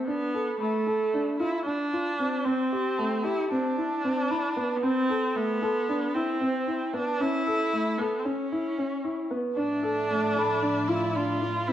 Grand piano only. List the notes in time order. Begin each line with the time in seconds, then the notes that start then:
0.07 D4
0.34 A4
0.60 A3
0.87 A4
1.14 D4
1.40 F4
1.66 D4
1.93 F4
2.19 C4
2.46 C4
2.73 G4
2.98 A3
3.24 G4
3.51 C4
3.78 E4
4.04 C4
4.30 E4
4.57 B3
4.83 C4
5.09 A4
5.36 A3
5.62 A4
5.89 D4
6.15 E4
6.41 C4
6.67 E4
6.94 B3
7.20 C#4
7.47 A4
7.73 A3
7.99 A4
8.25 C#4
8.52 E4
8.78 C#4
9.04 E4
9.31 B3
9.57 D4
9.83 A4
10.10 A3
10.36 A4
10.62 D4
10.89 F4
11.15 D4
11.42 F4
11.68 C4